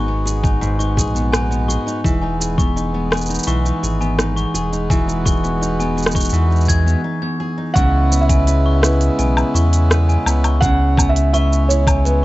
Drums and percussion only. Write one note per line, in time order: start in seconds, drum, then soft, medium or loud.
0.27 shaker medium
0.44 kick medium
0.44 shaker soft
0.63 shaker soft
0.80 shaker soft
0.97 kick medium
0.97 shaker medium
1.16 shaker soft
1.33 cross-stick medium
1.33 shaker soft
1.52 shaker soft
1.70 shaker medium
1.88 shaker soft
2.04 kick loud
2.04 shaker soft
2.41 shaker medium
2.58 kick loud
2.58 shaker soft
2.77 shaker soft
3.12 cross-stick medium
3.12 shaker soft
3.17 shaker soft
3.21 shaker soft
3.26 shaker soft
3.30 shaker soft
3.35 shaker medium
3.39 shaker medium
3.43 shaker medium
3.48 shaker soft
3.66 shaker soft
3.84 shaker medium
4.02 shaker soft
4.19 cross-stick medium
4.19 shaker soft
4.37 shaker soft
4.55 shaker medium
4.73 shaker soft
4.90 kick loud
4.90 shaker soft
5.09 shaker soft
5.26 kick loud
5.26 shaker medium
5.45 shaker soft
5.63 shaker soft
5.80 shaker soft
5.98 shaker soft
6.03 cross-stick medium
6.03 shaker soft
6.07 shaker soft
6.11 kick medium
6.11 shaker soft
6.16 shaker medium
6.20 shaker medium
6.25 shaker medium
6.29 shaker medium
6.34 shaker soft
6.52 shaker soft
6.56 shaker soft
6.61 shaker soft
6.65 kick medium
6.65 shaker soft
6.69 shaker medium
6.88 shaker soft
7.76 kick loud
7.76 open hi-hat soft
7.76 shaker soft
8.12 shaker medium
8.29 kick medium
8.29 open hi-hat medium
8.29 shaker soft
8.47 open hi-hat soft
8.47 shaker soft
8.83 cross-stick medium
8.83 shaker medium
9.01 open hi-hat medium
9.01 shaker soft
9.19 open hi-hat soft
9.19 shaker soft
9.37 low woodblock medium
9.37 shaker soft
9.56 shaker medium
9.73 open hi-hat medium
9.73 shaker soft
9.91 cross-stick medium
9.91 open hi-hat soft
9.91 shaker soft
10.10 shaker soft
10.26 low woodblock medium
10.26 shaker medium
10.44 open hi-hat medium
10.44 low woodblock medium
10.44 shaker soft
10.62 kick loud
10.62 open hi-hat soft
10.62 shaker soft
10.97 kick loud
10.97 low woodblock medium
10.97 shaker medium
11.16 open hi-hat medium
11.16 shaker soft
11.34 open hi-hat soft
11.34 shaker soft
11.53 shaker soft
11.70 shaker medium
11.87 kick loud
11.87 open hi-hat medium
11.87 low woodblock medium
11.87 shaker soft
12.05 open hi-hat soft
12.05 shaker soft